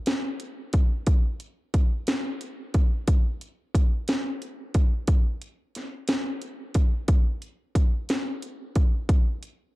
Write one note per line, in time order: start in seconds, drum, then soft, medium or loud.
0.06 snare loud
0.06 closed hi-hat medium
0.40 closed hi-hat soft
0.73 kick medium
0.73 closed hi-hat medium
1.07 kick medium
1.07 closed hi-hat medium
1.40 closed hi-hat soft
1.74 kick medium
1.74 closed hi-hat medium
2.07 snare loud
2.07 closed hi-hat medium
2.41 closed hi-hat soft
2.74 kick medium
2.74 closed hi-hat medium
3.08 kick medium
3.08 closed hi-hat medium
3.41 closed hi-hat soft
3.75 kick medium
3.75 closed hi-hat medium
4.08 snare loud
4.08 closed hi-hat medium
4.42 closed hi-hat soft
4.74 kick medium
4.74 closed hi-hat medium
5.08 kick loud
5.08 closed hi-hat medium
5.42 closed hi-hat soft
5.75 snare soft
5.75 closed hi-hat medium
6.08 snare loud
6.08 closed hi-hat medium
6.42 closed hi-hat soft
6.74 kick medium
6.74 closed hi-hat medium
7.08 kick loud
7.08 closed hi-hat medium
7.42 closed hi-hat soft
7.75 kick medium
7.75 closed hi-hat medium
8.09 snare loud
8.09 closed hi-hat medium
8.42 closed hi-hat soft
8.75 kick medium
8.75 closed hi-hat medium
9.09 kick loud
9.09 closed hi-hat medium
9.43 closed hi-hat soft